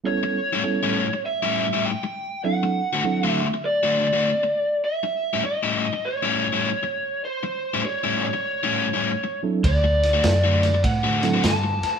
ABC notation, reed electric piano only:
X:1
M:4/4
L:1/8
Q:"Swing" 1/4=100
K:Amix
V:1 name="Reed electric piano"
[G,B,CEA] z [G,B,CEA] z4 z | [F,=CDEA] z [F,CDEA] z4 z | z8 | z6 z [F,=CDEA] |
z4 z [F,=CDEA] z2 |]